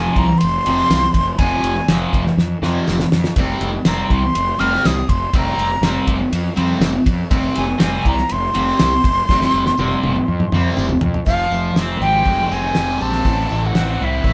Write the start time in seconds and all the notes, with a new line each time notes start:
Already playing: F2 C3 F3 G#5
0.16 C2 A#5, kick, ride
0.38 C6, ride
0.43 F1
0.66 F1 F2 C3 F3, ride
0.90 C2, snare, ride, tambourine
1.14 F1, kick, ride
1.39 F1 F2 C3 F3 G#5, kick, ride
1.63 F1, ride
1.88 F1 F2 C3 F3, snare, ride, tambourine
2.13 F1, kick, ride
2.27 snare
2.37 F2, snare
2.62 F2 C3 F3, snare
2.87 F1, snare, tambourine
3.00 snare
3.12 F2, snare
3.24 snare
3.36 F1 C3 G3 C4, kick, ride
3.61 F1, ride
3.85 F1 C3 G3 C4 A#5, snare, ride, tambourine
4.10 C2 C6, kick, ride
4.35 F1, ride
4.59 F1 C3 G3 C4 F6, ride
4.85 C2 D#6, snare, ride, tambourine
5.09 F1 C6, kick, ride
5.33 F1 C3 G3 C4 A#5, kick, ride
5.58 F1, ride
5.81 F1 C3 G3 C4, snare, ride, tambourine
6.07 F1, kick, ride
6.32 F2, ride
6.57 F2 C3 G3 C4, ride
6.80 F1, snare, ride, tambourine
7.06 F2, kick, ride
7.30 F1 C3 G3 C4, kick, ride
7.55 F1 G#5, ride
7.78 F1 C3 G3 C4 G#5, snare, ride, tambourine
8.05 C2 A#5, kick, ride
8.18 snare
8.29 F1 C6, ride
8.55 F1 C3 G3 C4, ride
8.80 C2, snare, ride, tambourine
9.04 F1, kick, ride
9.29 F1 C3 G3 C4, kick, snare
9.41 snare
9.54 F1
9.66 snare
9.77 F1 C3 G3 C4, high tom, tambourine
10.03 F1, high tom
10.16 mid tom
10.28 F2
10.40 mid tom
10.52 F2 C3 G3 C4, mid tom
10.77 F1, mid tom, tambourine
10.89 floor tom
11.01 F2, floor tom
11.14 floor tom
11.26 F1 F3 F5, kick, open hi-hat, tambourine
11.39 tambourine
11.50 F1, tambourine
11.63 tambourine
11.76 F1 C4, snare, open hi-hat, tambourine
12.00 G#1 G4 G5, tambourine
12.16 tambourine
12.26 F1 G#3, kick, open hi-hat, tambourine
12.50 F1 C4 G#5, tambourine
12.75 F1 G4, snare, open hi-hat, tambourine
13.01 A#1 C4 A5, tambourine
13.13 snare, tambourine
13.25 A1 A2, kick, open hi-hat, tambourine
13.50 A1, tambourine
13.66 F#5
13.74 A1 C4, snare, open hi-hat, tambourine
13.88 tambourine
14.01 C2 E4 E5, tambourine
14.14 tambourine
14.24 A1 A3, kick, open hi-hat, tambourine